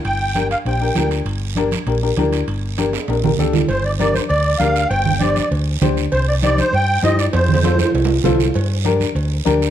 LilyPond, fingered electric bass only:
\new Staff \with { instrumentName = "Fingered electric bass" } { \clef bass \time 4/4 \key g \minor \tempo 4 = 198 g,,2 bes,,4 d,4 | g,,2 bes,,4 d,4 | g,,2 bes,,4 d,4 | g,,2 d,4 d,4 |
g,,2 d,4 d,4 | c,2 g,4 g,4 | f,2 c,4 c,4 | g,2 d,4 d,4 | }